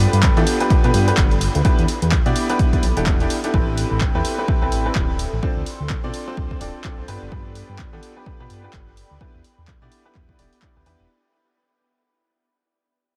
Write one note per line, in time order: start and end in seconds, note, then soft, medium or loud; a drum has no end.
0.00 0.34 B3 medium
0.00 0.34 D4 medium
0.00 0.34 F4 medium
0.00 0.34 G4 medium
0.00 3.53 A4 loud
0.00 0.34 B4 medium
0.00 5.19 D5 medium
0.00 5.19 G5 medium
0.13 0.28 G2 medium
0.13 closed hi-hat soft
0.23 kick loud
0.23 clap loud
0.23 closed hi-hat soft
0.37 0.44 E3 loud
0.37 0.57 B3 medium
0.37 0.57 D4 medium
0.37 0.57 F4 medium
0.37 0.57 G4 medium
0.37 0.57 A4 loud
0.37 closed hi-hat soft
0.47 5.19 B5 medium
0.47 open hi-hat loud
0.60 0.68 B3 medium
0.60 0.68 D4 medium
0.60 0.68 F4 medium
0.60 0.68 G4 medium
0.60 0.68 B4 medium
0.60 closed hi-hat soft
0.70 0.82 B3 medium
0.70 0.82 D4 medium
0.70 0.82 F4 medium
0.70 0.82 G4 medium
0.70 0.82 B4 medium
0.70 kick loud
0.70 closed hi-hat soft
0.84 0.91 B2 medium
0.84 1.04 B3 medium
0.84 1.04 D4 medium
0.84 1.04 F4 medium
0.84 1.04 G4 medium
0.84 1.04 B4 medium
0.84 closed hi-hat soft
0.94 1.12 G2 medium
0.94 open hi-hat loud
1.08 1.33 B3 medium
1.08 1.33 D4 medium
1.08 1.33 F4 medium
1.08 1.33 G4 medium
1.08 1.33 B4 medium
1.08 closed hi-hat soft
1.17 1.48 G1 medium
1.17 kick loud
1.17 clap loud
1.17 closed hi-hat soft
1.31 closed hi-hat soft
1.41 open hi-hat loud
1.55 1.62 D2 loud
1.55 closed hi-hat soft
1.65 1.82 B3 medium
1.65 1.82 D4 medium
1.65 1.82 E4 medium
1.65 1.82 G4 medium
1.65 1.82 B4 medium
1.65 kick loud
1.65 closed hi-hat soft
1.79 1.85 E2 medium
1.79 closed hi-hat soft
1.88 open hi-hat loud
2.02 2.17 E2 medium
2.02 closed hi-hat soft
2.12 kick loud
2.12 clap loud
2.12 closed hi-hat soft
2.26 2.33 B2 loud
2.26 2.46 B3 medium
2.26 2.46 D4 medium
2.26 2.46 E4 medium
2.26 2.46 G4 medium
2.26 2.46 D5 loud
2.26 closed hi-hat soft
2.36 open hi-hat loud
2.49 2.81 B3 medium
2.49 2.81 D4 medium
2.49 2.81 E4 medium
2.49 2.81 G4 medium
2.49 2.81 B4 medium
2.49 closed hi-hat soft
2.59 kick loud
2.59 closed hi-hat soft
2.73 kick medium
2.73 closed hi-hat soft
2.83 2.92 B1 medium
2.83 open hi-hat loud
2.97 3.25 E1 medium
2.97 3.16 B3 medium
2.97 3.16 D4 medium
2.97 3.16 E4 medium
2.97 3.16 G4 medium
2.97 3.16 A4 medium
2.97 closed hi-hat soft
3.06 kick loud
3.06 clap loud
3.06 closed hi-hat soft
3.20 3.35 B3 medium
3.20 3.35 D4 medium
3.20 3.35 E4 medium
3.20 3.35 G4 medium
3.20 3.35 A4 medium
3.20 closed hi-hat soft
3.30 open hi-hat loud
3.44 3.52 B3 medium
3.44 3.52 D4 medium
3.44 3.52 E4 medium
3.44 3.52 G4 medium
3.44 3.52 A4 medium
3.44 closed hi-hat soft
3.54 3.84 A1 medium
3.54 4.12 C4 medium
3.54 4.12 E4 medium
3.54 4.12 G4 medium
3.54 11.10 A4 medium
3.54 4.12 A4 medium
3.54 4.12 B4 medium
3.54 kick loud
3.78 open hi-hat loud
3.91 4.06 A1 medium
4.01 kick loud
4.01 clap loud
4.15 4.22 E2 loud
4.15 4.35 C4 medium
4.15 4.35 E4 medium
4.15 4.35 G4 medium
4.15 4.35 A4 medium
4.15 4.35 B4 medium
4.25 open hi-hat loud
4.38 4.46 C4 medium
4.38 4.46 E4 medium
4.38 4.46 G4 medium
4.38 4.46 A4 medium
4.38 4.46 B4 medium
4.48 4.60 C4 medium
4.48 4.60 E4 medium
4.48 4.60 G4 medium
4.48 4.60 A4 medium
4.48 4.60 B4 medium
4.48 kick loud
4.62 4.69 C2 medium
4.62 4.82 C4 medium
4.62 4.82 E4 medium
4.62 4.82 G4 medium
4.62 4.82 A4 medium
4.62 4.82 B4 medium
4.72 4.90 A1 medium
4.72 open hi-hat loud
4.86 5.11 C4 medium
4.86 5.11 E4 medium
4.86 5.11 G4 medium
4.86 5.11 A4 medium
4.86 5.11 B4 medium
4.95 5.26 D1 medium
4.95 kick loud
4.95 clap loud
5.19 open hi-hat medium
5.33 5.40 A1 loud
5.33 7.08 C6 medium
5.43 5.60 C4 medium
5.43 5.60 D4 medium
5.43 5.60 F4 medium
5.43 5.60 A4 medium
5.43 5.60 C5 medium
5.43 kick loud
5.55 5.63 D2 medium
5.55 11.10 G5 medium
5.64 11.10 D5 medium
5.64 open hi-hat medium
5.80 5.95 D2 medium
5.90 kick loud
5.90 clap loud
6.04 6.11 B2 medium
6.04 6.24 C4 medium
6.04 6.24 D4 medium
6.04 6.24 F4 medium
6.04 6.24 A4 medium
6.04 6.24 D5 loud
6.14 open hi-hat medium
6.27 6.59 C4 medium
6.27 6.59 D4 medium
6.27 6.59 F4 medium
6.27 6.59 A4 medium
6.27 6.59 C5 medium
6.37 6.55 D2 medium
6.37 kick loud
6.51 kick medium
6.61 6.70 D1 medium
6.61 6.82 C4 medium
6.61 6.82 D4 medium
6.61 6.82 F4 medium
6.61 6.82 A4 medium
6.61 6.82 D5 medium
6.61 open hi-hat loud
6.84 6.95 C4 medium
6.84 6.95 D4 medium
6.84 6.95 F4 medium
6.84 6.95 A4 medium
6.84 6.95 D5 medium
6.84 kick loud
6.84 clap loud
6.98 7.05 C2 medium
6.98 7.06 C4 medium
6.98 7.06 D4 medium
6.98 7.06 F4 medium
6.98 7.06 A4 medium
6.98 7.06 C5 medium
7.08 7.18 G2 medium
7.08 7.29 B3 medium
7.08 7.29 D4 medium
7.08 7.29 F4 medium
7.08 7.29 G4 medium
7.08 7.29 B4 loud
7.08 open hi-hat medium
7.22 7.29 G1 medium
7.32 7.62 G2 medium
7.32 7.89 B3 medium
7.32 7.89 D4 medium
7.32 7.89 F4 medium
7.32 7.89 G4 medium
7.32 7.89 B4 medium
7.32 kick loud
7.55 open hi-hat medium
7.69 7.84 G2 medium
7.79 kick loud
7.79 clap loud
7.93 8.00 E3 loud
7.93 8.13 B3 medium
7.93 8.13 D4 medium
7.93 8.13 F4 medium
7.93 8.13 G4 medium
7.93 8.13 A4 medium
8.03 11.10 B5 medium
8.03 open hi-hat medium
8.16 8.24 B3 medium
8.16 8.24 D4 medium
8.16 8.24 F4 medium
8.16 8.24 G4 medium
8.16 8.24 B4 medium
8.26 8.38 B3 medium
8.26 8.38 D4 medium
8.26 8.38 F4 medium
8.26 8.38 G4 medium
8.26 8.38 B4 medium
8.26 kick loud
8.40 8.47 B2 medium
8.40 8.60 B3 medium
8.40 8.60 D4 medium
8.40 8.60 F4 medium
8.40 8.60 G4 medium
8.40 8.60 B4 medium
8.50 8.68 G2 medium
8.50 open hi-hat medium
8.64 8.89 B3 medium
8.64 8.89 D4 medium
8.64 8.89 F4 medium
8.64 8.89 G4 medium
8.64 8.89 B4 medium
8.73 9.04 G1 medium
8.73 kick loud
8.73 clap loud
8.97 open hi-hat medium
9.11 9.18 D2 loud
9.21 9.38 B3 medium
9.21 9.38 D4 medium
9.21 9.38 E4 medium
9.21 9.38 G4 medium
9.21 9.38 B4 medium
9.21 kick loud
9.35 9.41 E2 medium
9.44 open hi-hat medium
9.58 9.73 E2 medium
9.68 kick loud
9.68 clap loud
9.82 9.89 B2 medium
9.82 10.02 B3 medium
9.82 10.02 D4 medium
9.82 10.02 E4 medium
9.82 10.02 G4 medium
9.82 10.02 D5 medium
9.92 open hi-hat medium
10.05 10.37 B3 medium
10.05 10.37 D4 medium
10.05 10.37 E4 medium
10.05 10.37 G4 medium
10.05 10.37 B4 medium
10.15 10.33 E2 medium
10.15 kick loud
10.15 clap medium
10.29 kick medium
10.39 10.48 E1 medium
10.39 10.60 B3 medium
10.39 10.60 D4 medium
10.39 10.60 E4 medium
10.39 10.60 G4 medium
10.39 10.60 D5 medium
10.39 open hi-hat medium
10.53 open hi-hat medium
10.62 10.73 B3 medium
10.62 10.73 D4 medium
10.62 10.73 E4 medium
10.62 10.73 G4 medium
10.62 10.73 D5 medium
10.62 kick loud
10.62 clap loud
10.76 10.83 D2 medium
10.76 10.84 B3 medium
10.76 10.84 D4 medium
10.76 10.84 E4 medium
10.76 10.84 G4 medium
10.76 10.84 B4 medium
10.86 10.96 E2 medium
10.86 11.07 B3 medium
10.86 11.07 D4 medium
10.86 11.07 E4 medium
10.86 11.07 G4 medium
10.86 11.07 B4 medium
10.86 open hi-hat medium
11.00 11.07 E1 medium